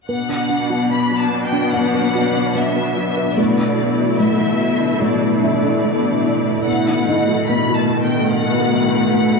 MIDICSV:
0, 0, Header, 1, 7, 480
1, 0, Start_track
1, 0, Key_signature, 2, "minor"
1, 0, Tempo, 821918
1, 54, Time_signature, 4, 2, 24, 8
1, 5487, End_track
2, 0, Start_track
2, 0, Title_t, "Violin section"
2, 0, Program_c, 0, 48
2, 49, Note_on_c, 0, 78, 53
2, 508, Note_off_c, 0, 78, 0
2, 535, Note_on_c, 0, 83, 48
2, 692, Note_on_c, 0, 81, 47
2, 694, Note_off_c, 0, 83, 0
2, 852, Note_on_c, 0, 79, 54
2, 853, Note_off_c, 0, 81, 0
2, 1010, Note_off_c, 0, 79, 0
2, 1012, Note_on_c, 0, 78, 54
2, 1493, Note_off_c, 0, 78, 0
2, 1493, Note_on_c, 0, 76, 53
2, 1970, Note_on_c, 0, 74, 50
2, 1974, Note_off_c, 0, 76, 0
2, 2451, Note_on_c, 0, 76, 54
2, 2452, Note_off_c, 0, 74, 0
2, 2933, Note_off_c, 0, 76, 0
2, 2934, Note_on_c, 0, 74, 52
2, 3164, Note_off_c, 0, 74, 0
2, 3171, Note_on_c, 0, 74, 54
2, 3878, Note_off_c, 0, 74, 0
2, 3888, Note_on_c, 0, 78, 52
2, 4361, Note_off_c, 0, 78, 0
2, 4371, Note_on_c, 0, 83, 56
2, 4529, Note_off_c, 0, 83, 0
2, 4533, Note_on_c, 0, 81, 47
2, 4692, Note_on_c, 0, 79, 50
2, 4693, Note_off_c, 0, 81, 0
2, 4850, Note_off_c, 0, 79, 0
2, 4855, Note_on_c, 0, 78, 58
2, 5325, Note_off_c, 0, 78, 0
2, 5334, Note_on_c, 0, 78, 62
2, 5487, Note_off_c, 0, 78, 0
2, 5487, End_track
3, 0, Start_track
3, 0, Title_t, "Felt piano"
3, 0, Program_c, 1, 0
3, 157, Control_c, 1, 64, 127
3, 1013, Note_on_c, 1, 78, 23
3, 1985, Control_c, 1, 64, 0
3, 2076, Control_c, 1, 64, 127
3, 2430, Note_off_c, 1, 78, 0
3, 3177, Note_on_c, 1, 76, 26
3, 3904, Control_c, 1, 64, 0
3, 3999, Control_c, 1, 64, 127
3, 4133, Note_on_c, 1, 75, 30
3, 4592, Note_off_c, 1, 76, 0
3, 5487, Note_off_c, 1, 75, 0
3, 5487, End_track
4, 0, Start_track
4, 0, Title_t, "Ambient pad"
4, 0, Program_c, 2, 92
4, 52, Note_on_c, 2, 66, 54
4, 52, Note_on_c, 2, 71, 53
4, 54, Note_on_c, 2, 54, 57
4, 54, Note_on_c, 2, 62, 56
4, 1949, Note_off_c, 2, 66, 0
4, 1950, Note_off_c, 2, 54, 0
4, 1950, Note_off_c, 2, 71, 0
4, 1951, Note_off_c, 2, 62, 0
4, 1966, Note_on_c, 2, 69, 51
4, 1968, Note_on_c, 2, 62, 55
4, 1970, Note_on_c, 2, 57, 50
4, 1970, Note_on_c, 2, 64, 56
4, 3867, Note_off_c, 2, 62, 0
4, 3886, Note_off_c, 2, 57, 0
4, 3890, Note_off_c, 2, 69, 0
4, 3892, Note_off_c, 2, 64, 0
4, 3893, Note_on_c, 2, 57, 51
4, 3894, Note_on_c, 2, 66, 58
4, 3895, Note_on_c, 2, 71, 57
4, 3897, Note_on_c, 2, 59, 55
4, 5487, Note_off_c, 2, 57, 0
4, 5487, Note_off_c, 2, 59, 0
4, 5487, Note_off_c, 2, 66, 0
4, 5487, Note_off_c, 2, 71, 0
4, 5487, End_track
5, 0, Start_track
5, 0, Title_t, "Synth arpeggio sound"
5, 0, Program_c, 3, 84
5, 52, Note_on_c, 3, 59, 62
5, 124, Note_off_c, 3, 59, 0
5, 170, Note_on_c, 3, 62, 43
5, 243, Note_off_c, 3, 62, 0
5, 289, Note_on_c, 3, 62, 47
5, 363, Note_off_c, 3, 62, 0
5, 408, Note_on_c, 3, 66, 45
5, 482, Note_off_c, 3, 66, 0
5, 529, Note_on_c, 3, 59, 67
5, 603, Note_off_c, 3, 59, 0
5, 649, Note_on_c, 3, 66, 47
5, 723, Note_off_c, 3, 66, 0
5, 890, Note_on_c, 3, 62, 44
5, 963, Note_off_c, 3, 62, 0
5, 1012, Note_on_c, 3, 59, 57
5, 1084, Note_off_c, 3, 59, 0
5, 1134, Note_on_c, 3, 71, 52
5, 1206, Note_off_c, 3, 71, 0
5, 1255, Note_on_c, 3, 66, 47
5, 1327, Note_off_c, 3, 66, 0
5, 1375, Note_on_c, 3, 62, 43
5, 1446, Note_off_c, 3, 62, 0
5, 1492, Note_on_c, 3, 59, 67
5, 1564, Note_off_c, 3, 59, 0
5, 1613, Note_on_c, 3, 71, 46
5, 1685, Note_off_c, 3, 71, 0
5, 1733, Note_on_c, 3, 66, 50
5, 1805, Note_off_c, 3, 66, 0
5, 1852, Note_on_c, 3, 71, 45
5, 1924, Note_off_c, 3, 71, 0
5, 1971, Note_on_c, 3, 57, 69
5, 2044, Note_off_c, 3, 57, 0
5, 2092, Note_on_c, 3, 62, 47
5, 2165, Note_off_c, 3, 62, 0
5, 2213, Note_on_c, 3, 62, 45
5, 2285, Note_off_c, 3, 62, 0
5, 2333, Note_on_c, 3, 64, 46
5, 2405, Note_off_c, 3, 64, 0
5, 2452, Note_on_c, 3, 57, 67
5, 2524, Note_off_c, 3, 57, 0
5, 2572, Note_on_c, 3, 64, 46
5, 2645, Note_off_c, 3, 64, 0
5, 2813, Note_on_c, 3, 62, 45
5, 2885, Note_off_c, 3, 62, 0
5, 2931, Note_on_c, 3, 57, 65
5, 3004, Note_off_c, 3, 57, 0
5, 3052, Note_on_c, 3, 69, 51
5, 3125, Note_off_c, 3, 69, 0
5, 3173, Note_on_c, 3, 64, 50
5, 3246, Note_off_c, 3, 64, 0
5, 3295, Note_on_c, 3, 62, 45
5, 3367, Note_off_c, 3, 62, 0
5, 3415, Note_on_c, 3, 57, 65
5, 3486, Note_off_c, 3, 57, 0
5, 3535, Note_on_c, 3, 69, 48
5, 3607, Note_off_c, 3, 69, 0
5, 3655, Note_on_c, 3, 64, 47
5, 3727, Note_off_c, 3, 64, 0
5, 3777, Note_on_c, 3, 69, 46
5, 3848, Note_off_c, 3, 69, 0
5, 3895, Note_on_c, 3, 59, 62
5, 3967, Note_off_c, 3, 59, 0
5, 4016, Note_on_c, 3, 63, 50
5, 4088, Note_off_c, 3, 63, 0
5, 4136, Note_on_c, 3, 63, 50
5, 4207, Note_off_c, 3, 63, 0
5, 4254, Note_on_c, 3, 66, 48
5, 4326, Note_off_c, 3, 66, 0
5, 4377, Note_on_c, 3, 59, 68
5, 4448, Note_off_c, 3, 59, 0
5, 4496, Note_on_c, 3, 66, 52
5, 4567, Note_off_c, 3, 66, 0
5, 4739, Note_on_c, 3, 63, 46
5, 4809, Note_off_c, 3, 63, 0
5, 4857, Note_on_c, 3, 59, 58
5, 4928, Note_off_c, 3, 59, 0
5, 4979, Note_on_c, 3, 69, 53
5, 5050, Note_off_c, 3, 69, 0
5, 5098, Note_on_c, 3, 66, 47
5, 5168, Note_off_c, 3, 66, 0
5, 5220, Note_on_c, 3, 63, 45
5, 5290, Note_off_c, 3, 63, 0
5, 5339, Note_on_c, 3, 59, 66
5, 5410, Note_off_c, 3, 59, 0
5, 5457, Note_on_c, 3, 69, 45
5, 5487, Note_off_c, 3, 69, 0
5, 5487, End_track
6, 0, Start_track
6, 0, Title_t, "Viola section"
6, 0, Program_c, 4, 48
6, 55, Note_on_c, 4, 62, 36
6, 56, Note_on_c, 4, 59, 41
6, 1951, Note_off_c, 4, 62, 0
6, 1952, Note_off_c, 4, 59, 0
6, 1976, Note_on_c, 4, 64, 37
6, 1979, Note_on_c, 4, 57, 42
6, 3873, Note_off_c, 4, 57, 0
6, 3895, Note_on_c, 4, 57, 40
6, 4352, Note_off_c, 4, 64, 0
6, 4375, Note_on_c, 4, 51, 39
6, 5487, Note_off_c, 4, 51, 0
6, 5487, Note_off_c, 4, 57, 0
6, 5487, End_track
7, 0, Start_track
7, 0, Title_t, "Cello section"
7, 0, Program_c, 5, 48
7, 51, Note_on_c, 5, 47, 43
7, 1949, Note_off_c, 5, 47, 0
7, 1973, Note_on_c, 5, 47, 44
7, 3870, Note_off_c, 5, 47, 0
7, 3897, Note_on_c, 5, 47, 47
7, 5487, Note_off_c, 5, 47, 0
7, 5487, End_track
0, 0, End_of_file